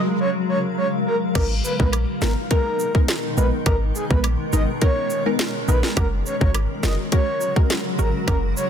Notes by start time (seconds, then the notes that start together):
Already playing: C#3 F#3 G#3 A#4 F5, swell
0.20 C#5
0.49 C#5
0.78 C#5
1.06 A#4
1.35 G#1 B2 D#3 G#3 B3 D#4 A#4, kick, closed hi-hat, crash, high woodblock
1.64 B4, cabasa
1.79 A#1 G#3 B3 D#4 A#4 B4, kick
1.93 cross-stick, closed hi-hat, high woodblock
2.22 G#1 G#3 B3 D#4 A#4, snare, clap, cabasa
2.50 G#3 B3 D#4 A#4, kick, closed hi-hat
2.79 cabasa
2.95 G#3 B3 D#4 A#4, kick
3.08 snare, clap, closed hi-hat
3.37 A#1 G#3 B3 D#4 A#4 B4, cabasa
3.66 G#1 G#3 B3 C#4 D#4 A#4, kick, closed hi-hat, high woodblock
3.95 G#4, cabasa
4.10 A#1 G#3 B3 D#4 A#4 B4, kick
4.24 cross-stick, closed hi-hat, high woodblock
4.53 G#1 G#3 B3 D#4 A#4 D#5, cabasa
4.82 G#3 B3 D#4 A#4 C#5, kick, closed hi-hat
5.10 cabasa
5.26 G#3 B3 D#4 A#4
5.39 snare, clap, closed hi-hat
5.68 A#1 G#3 B3 D#4 A#4 B4, cabasa
5.83 snare
5.96 F#1 C#3 F#3 G#3 C#4 F#4 A#4, kick, closed hi-hat, high woodblock
6.26 C#5, cabasa
6.41 G#1 G#3 C#4 F#4 A#4 C#5, kick
6.54 cross-stick, closed hi-hat, high woodblock
6.83 F#1 G#3 C#4 F#4 A#4 D#5, snare, clap, cabasa
7.12 G#3 C#4 F#4 A#4 C#5, kick, closed hi-hat
7.41 cabasa
7.56 G#3 C#4 F#4 A#4, kick
7.70 snare, clap, closed hi-hat
7.99 G#1 G#3 C#4 F#4 A#4, cabasa
8.27 F#1 G#3 C#4 F#4 A#4, kick, closed hi-hat, high woodblock
8.56 C#5, cabasa